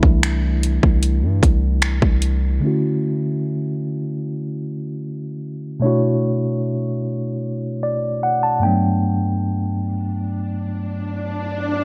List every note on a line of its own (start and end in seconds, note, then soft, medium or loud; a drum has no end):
0.00 0.79 C2 loud
0.00 1.79 E3 medium
0.00 2.62 A3 soft
0.00 2.64 D4 medium
0.00 1.78 E4 medium
0.00 kick medium
0.23 finger snap loud
0.23 closed hi-hat medium
0.63 closed hi-hat medium
0.83 1.24 C2 loud
0.83 kick medium
1.03 closed hi-hat medium
1.23 1.41 G2 medium
1.43 2.00 C2 medium
1.43 kick medium
1.43 closed hi-hat medium
1.82 finger snap loud
1.82 closed hi-hat medium
2.02 2.60 C2 medium
2.02 kick loud
2.22 closed hi-hat medium
2.60 5.77 D3 medium
2.60 5.78 A3 medium
2.60 5.79 C#4 medium
2.65 5.80 E4 medium
2.65 5.81 F#4 medium
5.80 8.57 B2 medium
5.80 8.58 A3 medium
5.80 8.59 D4 medium
5.80 8.58 C#5 medium
5.85 8.60 E4 medium
5.85 8.60 F#4 medium
7.83 8.20 D5 medium
8.23 8.41 F#5 medium
8.43 8.61 A5 medium
8.60 11.77 G2 medium
8.60 11.78 A3 medium
8.60 11.79 B3 medium
8.60 9.00 G5 medium
8.65 11.81 F#3 medium
8.65 11.80 D4 medium
9.02 swell medium